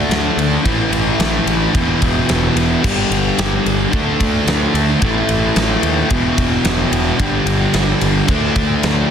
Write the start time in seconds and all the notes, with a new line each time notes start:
Already playing: D3 A3 D4
0.09 D2, snare, ride
0.37 D2, ride
0.63 A1 A2 E3 A3, kick, ride
0.91 A1, ride
1.19 A1, snare, ride
1.47 A1, ride
1.73 E1 E2 B2 E3, kick, ride
2.02 E1, kick, ride
2.29 E1, snare, ride
2.55 E1, ride
2.83 G1 G2 D3, kick, crash
2.87 G3
3.11 G1, ride
3.39 G1, snare, ride
3.66 G1, ride
3.91 D2 D3 A3 D4, kick, ride
4.20 D2, kick, ride
4.47 D2, snare, ride
4.74 D2, ride
5.00 A1 A2 E3, kick, ride
5.04 A3
5.29 A1, ride
5.56 A1, snare, ride
5.83 D#2, ride
6.09 E1 E2 B2 E3, kick, ride
6.38 E1, kick, ride
6.65 E1, snare, ride
6.92 E1, ride
7.17 G1 G2 D3 G3, kick, ride
7.46 G1, ride
7.74 G1, snare, ride
8.01 G1, ride
8.27 D2 D3 A3, kick, ride
8.31 D4
8.56 D2, kick, ride
8.83 D2, snare, ride